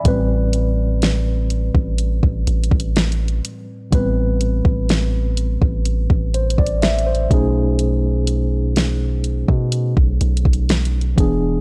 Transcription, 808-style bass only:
X:1
M:4/4
L:1/16
Q:1/4=62
K:Am
V:1 name="808-style bass" clef=bass
A,,,6- A,,, A,,,2 A,,, A,,, A,,,3 z2 | A,,,3 A,,,4 A,,,2 A,,,2 A,,,3 B,,,2- | B,,,6- B,,, B,,2 B,,, B,,, B,,,3 E,,,2 |]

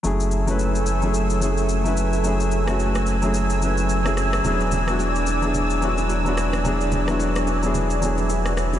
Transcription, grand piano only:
X:1
M:4/4
L:1/16
Q:"Swing 16ths" 1/4=109
K:F#m
V:1 name="Grand piano"
[F,A,CEG]2 z [F,A,CEB]3 z [F,A,CEG]2 z [F,A,CEG]2 z [F,A,CEB]2 z | [F,A,CEG]2 z [F,A,CEF]3 z [F,A,CEG]2 z [F,A,CEB]2 z [F,A,CEG]2 z | [F,B,DEG]2 z [F,B,DEF]3 z [F,B,DEG]2 z [F,B,DEF]2 z [F,B,DEF]2 z | [F,B,DEG]2 z [F,B,DEF]3 z [F,B,DEG]2 z [F,B,DEGg]2 [DGe] [FB] [Gc] [FB] |]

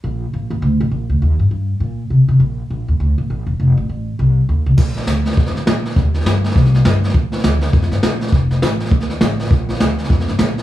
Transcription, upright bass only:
X:1
M:4/4
L:1/8
Q:"Swing" 1/4=203
K:Bb
V:1 name="Upright bass" clef=bass
B,,,2 B,,, E,, D,, B,,, B,,, D,, | E,, G,, G,,2 B,,2 C, C, | B,,,2 B,,, E,, D,, B,,, B,,, =E,,, | F,,, A,,, A,,,2 C,,2 E,, C,, |
B,,,2 D,,2 F,, G,, B,,2 | E,,2 G,,2 C,,2 G,,2 | B,,,2 D,,2 F,, G,, B,,2 | F,,,2 A,,,2 E,,2 A,,,2 |
B,,,2 D,,2 F,, G,, B,,2 |]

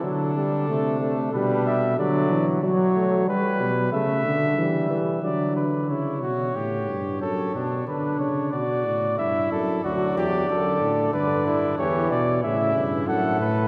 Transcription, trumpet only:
X:1
M:3/4
L:1/8
Q:1/4=92
K:Dmix
V:1 name="Trumpet"
D4 D2 | z6 | z6 | E F G2 A D |
D2 F2 E2 | F G A2 B E | G z E2 A2 |]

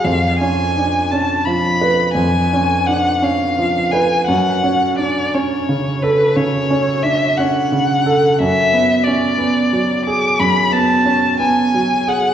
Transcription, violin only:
X:1
M:12/8
L:1/8
Q:3/8=58
K:F#m
V:1 name="Violin"
^e g2 a b2 g2 f e2 g | f2 d c2 B c2 e f3 | e2 d3 d' b a2 g2 f |]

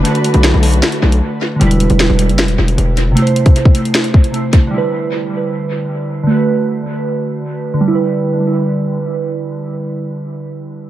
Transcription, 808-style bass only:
X:1
M:4/4
L:1/16
Q:1/4=154
K:Em
V:1 name="808-style bass" clef=bass
z3 B,,,2 B,,,3 z2 B,,,2 z4 | E,,,3 E,,,2 E,,,2 F,,,3/2 E,,,3/2 E,,,2 E,,,3 G,,, | z16 | z16 |
z16 | z16 | z16 |]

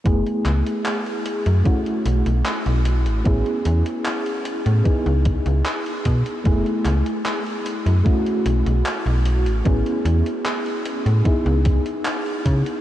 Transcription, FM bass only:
X:1
M:4/4
L:1/16
Q:1/4=75
K:F#dor
V:1 name="FM bass" clef=bass
F,,, z C,, z4 F,, z2 B,,, B,,, z B,,,2 A,,, | A,,, z E,, z4 A,, z C,,2 C,, z2 B,, z | F,,, z C,, z4 F,, z2 B,,, B,,, z B,,,2 A,,, | A,,, z E,, z4 A,, z C,,2 z3 C, z |]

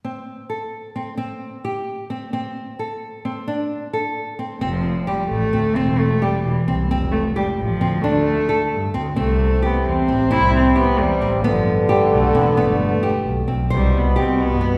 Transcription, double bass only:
X:1
M:5/8
L:1/16
Q:1/4=132
K:C
V:1 name="Double bass" clef=bass
z8 z2 | z8 z2 | z8 z2 | z8 z2 |
F,,,6 A,,,2 D,, z | E,,,6 E,,,2 C,, z | F,,,6 A,,,2 D,, z | D,,6 G,,2 D,, z |
C,,6 E,,2 A,,, z | C,,6 E,,2 A,,, z | G,,,6 B,,,2 E,,, z | G,,,6 B,,,2 B,,, z |
C,,2 z2 C,,2 z G,,2 z |]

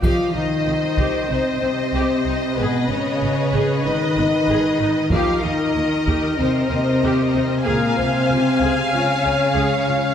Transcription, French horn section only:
X:1
M:4/4
L:1/8
Q:1/4=95
K:Cphr
V:1 name="French horn section"
F E3 C C3 | _C D3 E4 | F E3 C C3 | B, C3 D4 |]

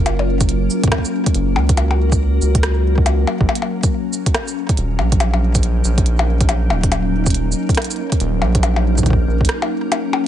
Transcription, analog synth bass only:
X:1
M:4/4
L:1/16
Q:"Swing 16ths" 1/4=140
K:Ebm
V:1 name="Analog synth bass" clef=bass
G,,,6 z6 G,,,2 D,,2- | D,,6 D,,8 z B,,, | z12 E,,,2 B,,,2- | B,,,6 B,,,8 E,,,2- |
E,,,6 z6 E,,,2 B,,,2- | B,,,6 B,,,2 z8 |]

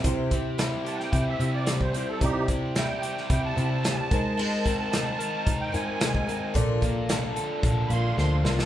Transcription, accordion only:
X:1
M:4/4
L:1/16
Q:1/4=111
K:Cmix
V:1 name="Accordion"
z6 a [^fg]2 e2 d2 c2 A | [_EG]2 z2 g4 g a4 [_a=a]3- | [_a=a]3 a6 g _a6 | z8 z2 [=bc']2 c'2 c' a |]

